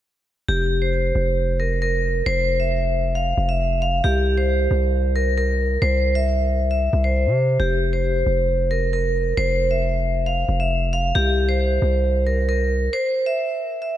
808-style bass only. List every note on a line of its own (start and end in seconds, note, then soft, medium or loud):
0.49 1.13 F1 loud
1.15 2.22 F1 loud
2.26 3.34 F1 loud
3.38 4.02 F1 loud
4.04 4.68 C2 loud
4.71 5.78 C2 loud
5.82 6.89 C2 loud
6.93 7.28 C2 loud
7.26 7.58 C3 loud
7.60 8.24 F1 loud
8.26 9.34 F1 loud
9.37 10.45 F1 loud
10.49 11.13 F1 loud
11.15 11.79 C2 loud
11.82 12.89 C2 loud